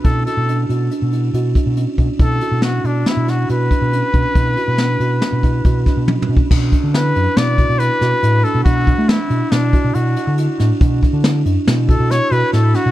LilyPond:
<<
  \new Staff \with { instrumentName = "Trumpet" } { \time 5/4 \key b \minor \tempo 4 = 139 a'8 a'4 r2. r8 | a'4 fis'8 d'8 e'8 fis'8 b'2~ | b'1 r4 | r4 b'4 d''4 b'4. a'8 |
fis'4 e'4 d'4 fis'4 r4 | r2 r8 a'8 cis''8 b'8 a'8 fis'8 | }
  \new Staff \with { instrumentName = "Kalimba" } { \time 5/4 \key b \minor e'8 fis'8 d'8 fis'8 d'8 e'8 fis'8 d'8 cis'8 d'8 | e'8 fis'8 d'8 fis'8 d'8 e'8 fis'8 d'8 cis'8 d'8 | e'8 fis'8 d'8 fis'8 d'8 e'8 fis'8 d'8 cis'8 d'8 | d'8 d'8 e'8 d'8 e'8 fis'8 e'8 fis'8 e'8 d'8 |
d'8 d'8 e'8 d'8 e'8 fis'8 e'8 fis'8 e'8 d'8 | d'8 d'8 e'8 d'8 e'8 fis'8 e'8 fis'8 e'8 d'8 | }
  \new Staff \with { instrumentName = "Fingered electric bass" } { \clef bass \time 5/4 \key b \minor b,8 r16 b,8. b,8 r16 b,8. b,8 r16 b,8 r16 b,16 r16 | b,8 r16 b,8. b,8 r16 b,8. b,8 r16 b,8 r16 b,16 r16 | b,8 r16 b,8. b,8 r16 b,8. b,8 r16 b,8 r16 b,16 r16 | b,8 r16 d8. fis,16 r16 b,8. b,8 r16 b,16 r16 a,8 r16 b,16 |
b,8. a8 r16 b,16 r16 b,8 r16 b,16 b,8 r16 d8 r16 a,16 r16 | b,8 r16 d8. fis,16 r16 b,8. b,8 r16 b,16 r16 a,8 r16 b,16 | }
  \new DrumStaff \with { instrumentName = "Drums" } \drummode { \time 5/4 <hh bd>8 hh8 hh8 hh8 hh8 hh8 hh8 <hh bd>8 hh8 <hh bd>8 | <hh bd>8 hh8 <hh sn>8 hh8 <hh sn>8 <hh sn>8 hh8 <hh bd>8 hh8 <hh bd>8 | <hh bd>8 hh8 <hh sn>8 hh8 <hh sn>8 <hh bd>8 <hh bd>8 <hh bd sn>8 \tuplet 3/2 { tommh8 toml8 bd8 } | <cymc bd>8 <hh bd>8 <hh sn>8 hh8 <hh sn>8 <hh bd>8 hh8 <hh sn>8 hh8 hh8 |
<hh bd>8 <hh bd>8 <hh sn>8 hh8 <hh sn>8 <hh bd>8 hh8 hh8 hh8 <hh sn>8 | <hh bd>8 <hh bd>8 <hh sn>8 hh8 <hh sn>8 <hh bd>8 <hh sn>8 hh8 <hh sn>8 <hh sn>8 | }
>>